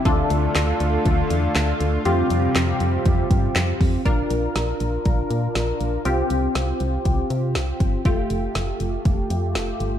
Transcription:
<<
  \new Staff \with { instrumentName = "Analog polysynth" } { \time 4/4 \key f \major \tempo 4 = 120 <d' f' a'>1 | <c' f' g'>1 | <d' f' bes'>1 | <c' f' g'>1 |
<a f' g'>1 | }
  \new Staff \with { instrumentName = "Analog synth pad" } { \clef bass \time 4/4 \key f \major << { f'1~ | f'1 | r1 | r1 |
r1 | } \\ { <d a>1 | <c g>1 | r1 | r1 |
r1 | } >> }
  \new Staff \with { instrumentName = "FM bass" } { \clef bass \time 4/4 \key f \major d,8 d,8 d,8 d,8 d,8 e,8 d,8 d,8 | f,8 f,8 f,8 f,8 f,8 g,8 f,8 f,8 | bes,,8 bes,,8 bes,,8 bes,,8 bes,,8 bes,8 bes,,8 bes,,8 | c,8 c,8 c,8 c,8 c,8 c8 c,8 g,,8 |
f,,8 f,,8 f,,8 f,,8 f,,8 f,8 f,,8 g,,8 | }
  \new DrumStaff \with { instrumentName = "Drums" } \drummode { \time 4/4 <hh bd>8 hh8 <hc hh sn>8 hh8 <hh bd>8 hh8 <hc hh sn>8 hh8 | hh8 hh8 <hc hh sn>8 hh8 <hh bd>8 <hh bd>8 <hc hh sn>8 <hho bd>8 | <hh bd>8 hh8 <hh sn>8 hh8 <hh bd>8 hh8 <hh sn>8 hh8 | hh8 hh8 <hh sn>8 hh8 <hh bd>8 hh8 <hh sn>8 <hh bd>8 |
<hh bd>8 hh8 <hh sn>8 hh8 <hh bd>8 hh8 <hh sn>8 hh8 | }
>>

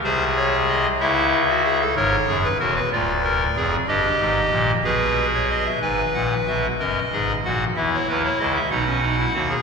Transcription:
<<
  \new Staff \with { instrumentName = "Pipe organ" } { \time 6/8 \key gis \phrygian \tempo 4. = 62 << { bis'8 cis''8 dis''8 e''4. | cis''8. b'16 ais'16 b'16 d''4. | dis''4. b'8. cis''16 dis''16 e''16 | gis''8 fis''8 e''8 dis''4 fis''8 |
e''16 cis''16 b'16 cis''16 dis''16 e''16 fis''4. | } \\ { gis'4. e'8. fis'16 gis'16 a'16 | ais'8 gis'8 fis'8 eis'8 ais'8 gis'8 | g'4. gis'4. | b'4. ais'8 gis'8 fis'8 |
e'4. dis'16 cis'16 dis'16 e'16 fis'16 gis'16 | } >> }
  \new Staff \with { instrumentName = "Pipe organ" } { \clef bass \time 6/8 \key gis \phrygian <bis,, bis,>4. <cis, cis>4. | <gis,, gis,>8 <fis,, fis,>8 <e,, e,>8 <d,, d,>4 <eis,, eis,>8 | <g,, g,>8 <gis,, gis,>8 <ais,, ais,>8 <b,, b,>4. | <gis,, gis,>8 <ais,, ais,>8 <b,, b,>8 <fis,, fis,>8 <gis,, gis,>8 <ais,, ais,>8 |
<e, e>8 <dis, dis>8 <cis, cis>8 <b,, b,>4 <dis, dis>8 | }
>>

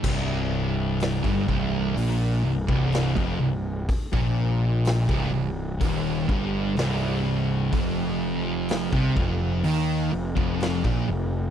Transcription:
<<
  \new Staff \with { instrumentName = "Distorted electric guitar" } { \clef bass \time 4/4 \key c \minor \tempo 4 = 62 c,4~ c,16 g,16 c,8 bes,8 c,16 c,8 f,16 c,8 | r16 bes,4 c,16 c,8 ees,8 g,8 c,4 | f,4~ f,16 c16 f,8 ees8 f,16 f,8 bes,16 f,8 | }
  \new Staff \with { instrumentName = "Distorted electric guitar" } { \clef bass \time 4/4 \key c \minor c,4~ c,16 g,16 c,8 bes,8 c,16 c,8 f,16 c,8 | r16 bes,4 c,16 c,8 ees,8 g,8 c,4 | f,4~ f,16 c16 f,8 ees8 f,16 f,8 bes,16 f,8 | }
  \new Staff \with { instrumentName = "Distorted electric guitar" } { \clef bass \time 4/4 \key c \minor c,4~ c,16 g,16 c,8 bes,8 c,16 c,8 f,16 c,8 | r16 bes,4 c,16 c,8 ees,8 g,8 c,4 | f,4~ f,16 c16 f,8 ees8 f,16 f,8 bes,16 f,8 | }
  \new Staff \with { instrumentName = "Picked electric bass" } { \clef bass \time 4/4 \key c \minor c,,4~ c,,16 g,,16 c,,8 bes,,8 c,,16 c,,8 f,,16 c,,8 | r16 bes,,4 c,,16 c,,8 ees,,8 g,,8 c,,4 | f,,4~ f,,16 c,16 f,,8 ees,8 f,,16 f,,8 bes,,16 f,,8 | }
  \new DrumStaff \with { instrumentName = "Drums" } \drummode { \time 4/4 <cymc bd>4 <hho sn>16 bd16 bd8 hho8. bd16 <hho sn>16 bd8. | <hho bd>16 bd8. <hho sn>16 bd8. <hho bd>8 bd8 <hho sn>4 | <hho bd>4 <hho sn>16 bd16 bd8 hho8. bd16 <hho sn>16 bd8. | }
>>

